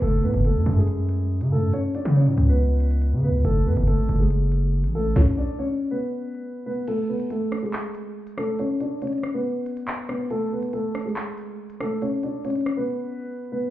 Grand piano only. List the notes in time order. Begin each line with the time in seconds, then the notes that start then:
0.02 A3 A4
0.24 B3 B4
0.45 A3 A4
0.77 G#3 G#4
1.52 A3 A4
1.74 C#4 C#5
1.95 D4 D5
2.16 C#4 C#5
2.49 B3 B4
3.24 B3 B4
3.45 A3 A4
3.67 B3 B4
3.87 A3 A4
4.20 G#3 G#4
4.95 A3 A4
5.16 C#4 C#5
5.37 D4 D5
5.59 C#4 C#5
5.91 B3 B4
6.66 B3 B4
6.88 A3 A4
7.09 B3 B4
7.31 A3 A4
7.63 G#3 G#4
8.38 A3 A4
8.59 C#4 C#5
8.81 D4 D5
9.02 C#4 C#5
9.34 B3 B4
10.09 B3 B4
10.31 A3 A4
10.53 B3 B4
10.73 A3 A4
11.06 G#3 G#4
11.81 A3 A4
12.02 C#4 C#5
12.23 D4 D5
12.45 C#4 C#5
12.77 B3 B4
13.52 B3 B4